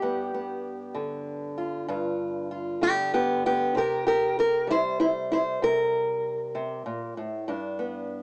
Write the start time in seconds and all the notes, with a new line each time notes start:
Already playing: G3 G4
0.02 G2 B3
0.34 B3
0.95 D3
1.58 F4
1.88 G2 F4
2.51 F4
2.81 D3 B3 G4
3.14 B3 G4
3.46 B3 G4
3.75 C3 G4 A#4
4.07 G4 A#4
4.39 G4 A#4
4.67 G3 E4 C5
5.00 E4 C5
5.32 E4 C5
5.62 C3 A#4
6.55 C3
6.86 A#2
7.17 A2
7.48 G2 D4
7.79 B3